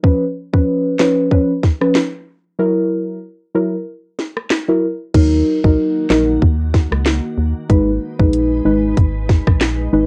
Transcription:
0.03 0.24 F3 medium
0.03 0.25 C#4 medium
0.03 0.25 B4 loud
0.03 kick loud
0.53 0.96 F3 medium
0.53 0.96 C#4 medium
0.53 0.96 B4 medium
0.53 kick medium
0.99 1.29 F3 medium
0.99 1.29 C#4 medium
0.99 1.29 B4 medium
0.99 snare loud
0.99 clap medium
1.31 1.52 F3 medium
1.31 1.52 C#4 medium
1.31 1.53 B4 loud
1.31 kick medium
1.63 kick medium
1.63 snare medium
1.81 1.99 F3 medium
1.81 1.99 C#4 medium
1.81 1.99 B4 medium
1.81 cross-stick medium
1.95 snare loud
1.95 clap medium
2.59 3.18 F#3 medium
2.59 3.18 E4 medium
2.59 3.19 A#4 loud
3.55 3.76 F#3 medium
3.55 3.76 E4 medium
3.55 3.76 A#4 medium
4.19 snare medium
4.37 cross-stick medium
4.50 snare loud
4.50 clap medium
4.68 4.86 F#3 medium
4.68 4.86 E4 medium
4.68 4.87 A#4 medium
5.14 5.43 D#2 loud
5.14 7.67 D#3 medium
5.14 5.60 F#3 medium
5.14 7.67 A#3 medium
5.14 5.60 D#4 medium
5.14 7.67 F#4 medium
5.14 5.60 A#4 loud
5.14 kick loud
5.14 crash medium
5.64 5.77 B1 medium
5.64 6.07 F#3 medium
5.64 6.07 D#4 medium
5.64 6.07 A#4 medium
5.64 kick medium
6.10 6.39 A#1 medium
6.10 6.40 F#3 medium
6.10 6.40 D#4 medium
6.10 6.40 A#4 medium
6.10 snare loud
6.10 clap medium
6.42 6.87 D#2 loud
6.42 kick medium
6.74 kick medium
6.74 snare medium
6.92 7.20 C#2 medium
6.92 cross-stick loud
7.06 snare loud
7.06 clap medium
7.38 7.54 D#2 medium
7.69 7.98 G#1 loud
7.69 7.90 G#3 medium
7.69 10.06 G#3 medium
7.69 7.91 D#4 medium
7.69 10.06 D#4 medium
7.69 10.06 B4 medium
7.69 7.91 B4 loud
7.69 kick loud
7.69 closed hi-hat medium
8.19 8.61 A#1 medium
8.19 8.62 G#3 medium
8.19 8.62 D#4 medium
8.19 8.62 B4 medium
8.19 kick medium
8.33 closed hi-hat medium
8.65 8.94 G#1 loud
8.65 8.95 G#3 medium
8.65 8.95 D#4 medium
8.65 8.95 B4 medium
8.97 9.42 G#1 loud
8.97 kick medium
8.97 closed hi-hat medium
9.29 kick medium
9.29 snare medium
9.47 9.88 A#1 medium
9.47 kick medium
9.47 cross-stick medium
9.61 snare loud
9.61 clap medium
9.61 closed hi-hat medium
9.93 10.06 G#1 loud
9.93 10.06 G#3 medium
9.93 10.06 D#4 medium
9.93 10.06 B4 medium

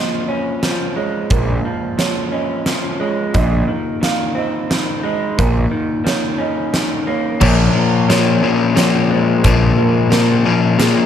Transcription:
0.00 0.97 A#2 medium
0.00 0.62 F3 medium
0.00 0.96 A#3 medium
0.00 0.28 C#4 soft
0.00 0.28 D#5 medium
0.28 1.98 C#4 medium
0.28 0.95 C#5 medium
0.63 1.65 F3 medium
0.63 snare medium
0.63 closed hi-hat medium
0.96 2.66 G#3 medium
0.96 1.31 C#5 medium
1.30 1.57 A#1 medium
1.30 3.01 A#2 medium
1.30 1.99 A#4 medium
1.30 kick loud
1.30 closed hi-hat medium
1.65 1.97 F3 medium
1.98 2.65 F3 medium
1.98 2.32 C#5 medium
1.98 snare medium
1.98 closed hi-hat medium
2.32 3.34 C#4 medium
2.32 3.00 D#5 medium
2.66 3.34 F3 medium
2.66 snare medium
2.66 closed hi-hat medium
3.00 3.34 G#3 medium
3.00 3.34 C#5 medium
3.33 3.61 A#1 loud
3.33 5.03 A#2 medium
3.33 4.02 D#5 medium
3.33 kick medium
3.33 closed hi-hat medium
3.68 4.00 D#3 medium
4.01 4.69 D#3 medium
4.01 4.36 F5 medium
4.01 snare medium
4.01 closed hi-hat medium
4.35 5.37 C4 medium
4.35 5.03 D#5 medium
4.70 5.38 D#3 medium
4.70 snare medium
4.70 closed hi-hat medium
5.03 5.37 G#3 medium
5.03 5.38 D#5 medium
5.38 5.65 A#1 loud
5.38 7.07 A#2 medium
5.38 6.05 A#4 medium
5.38 kick loud
5.38 closed hi-hat medium
5.71 6.03 D#3 medium
6.04 6.72 D#3 medium
6.04 6.39 C#5 medium
6.04 snare medium
6.04 closed hi-hat medium
6.38 7.40 C#4 medium
6.38 7.07 D#5 medium
6.73 7.41 D#3 medium
6.73 snare medium
6.73 closed hi-hat medium
7.07 7.41 A#3 medium
7.07 7.39 C#5 medium
7.40 7.68 A#1 medium
7.40 9.10 A#2 medium
7.40 8.09 A#2 medium
7.40 8.10 F3 medium
7.40 8.10 A#3 loud
7.40 8.07 C#5 medium
7.40 kick loud
7.40 crash loud
7.75 8.08 F3 medium
8.09 8.42 A#2 medium
8.09 8.76 F3 medium
8.09 8.43 F3 medium
8.09 8.43 A#3 medium
8.09 8.42 C#5 medium
8.09 snare medium
8.09 closed hi-hat medium
8.42 8.74 A#2 medium
8.42 8.76 F3 medium
8.42 8.75 A#3 medium
8.42 10.12 C#4 medium
8.42 8.76 A#4 medium
8.75 9.43 A#2 medium
8.75 9.44 F3 medium
8.75 9.78 F3 medium
8.75 9.44 A#3 medium
8.75 9.09 C#5 medium
8.75 snare medium
8.75 closed hi-hat medium
9.10 10.79 G#3 medium
9.10 9.78 C5 medium
9.44 9.71 A#1 loud
9.44 10.09 A#2 medium
9.44 11.06 A#2 medium
9.44 10.11 F3 medium
9.44 10.11 A#3 medium
9.44 kick loud
9.44 closed hi-hat medium
9.77 10.11 F3 medium
9.77 10.09 A#4 medium
10.10 10.44 A#2 medium
10.10 10.45 F3 medium
10.10 10.78 F3 medium
10.10 10.45 A#3 medium
10.10 10.79 A#4 medium
10.10 snare medium
10.10 closed hi-hat medium
10.45 10.77 A#2 medium
10.45 10.78 F3 medium
10.45 10.78 A#3 loud
10.45 11.06 C#4 medium
10.78 11.06 A#2 medium
10.78 11.06 F3 medium
10.78 11.06 A#3 loud
10.78 11.06 G#4 medium
10.78 snare medium
10.78 closed hi-hat medium

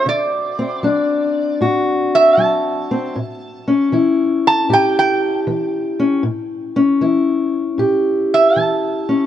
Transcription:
0.00 1.60 F#4 medium
0.06 0.78 D3 medium
0.06 1.58 D5 medium
0.59 2.90 C4 medium
0.83 1.55 F#3 medium
0.83 3.12 D4 medium
1.61 2.33 A2 medium
1.61 3.16 F#4 medium
2.15 2.41 E5 loud
2.38 3.10 F#3 medium
2.38 3.90 A5 medium
2.91 3.13 C4 medium
3.16 3.88 A2 medium
3.68 5.98 C#4 medium
3.92 4.65 E3 medium
3.92 7.01 E4 medium
4.47 4.71 A5 loud
4.69 5.42 A2 medium
4.69 6.21 G4 medium
4.74 4.97 G5 loud
4.99 5.39 G5 loud
5.47 6.19 E3 medium
5.99 6.22 C#4 medium
6.23 6.96 A2 medium
6.76 9.08 C#4 medium
7.01 7.74 E3 medium
7.01 9.26 E4 medium
7.78 8.51 A2 medium
7.78 9.26 G4 medium
8.34 8.58 E5 loud
8.56 9.26 E3 medium
8.56 9.26 A5 loud
9.09 9.26 C#4 medium

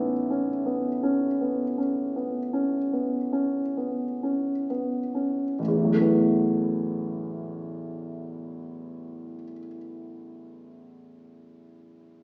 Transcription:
0.00 5.55 A1 soft
0.00 0.50 B3 soft
0.00 0.30 C#4 soft
0.00 5.62 D#4 soft
0.00 4.65 E4 soft
0.00 4.69 A4 medium
0.30 0.88 C#4 soft
0.66 1.25 B3 soft
1.03 1.62 C#4 soft
1.41 1.78 B3 soft
1.78 2.38 C#4 soft
2.16 2.77 B3 soft
2.53 3.17 C#4 soft
2.93 3.59 B3 soft
3.33 4.04 C#4 soft
3.77 4.50 B3 soft
4.23 4.98 C#4 soft
4.70 5.42 B3 soft
5.15 5.58 C#4 soft
5.59 9.34 A1 soft
5.68 9.43 E2 soft
5.77 9.52 E3 soft
5.84 9.59 F#3 soft
5.93 9.68 A3 soft
6.01 9.76 B3 soft

